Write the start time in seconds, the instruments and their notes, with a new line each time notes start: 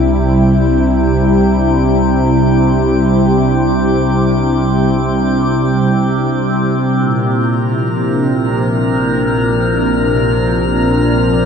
Already playing: analog synth bass C2, analog synth pad C3 G3 D4 E4, synth drone C3, synth texture G4 G5
6.98 analog synth bass A#1, analog synth pad A#2, synth texture A#4 A#5
7.78 analog synth pad F3
8.04 analog synth pad C4 D4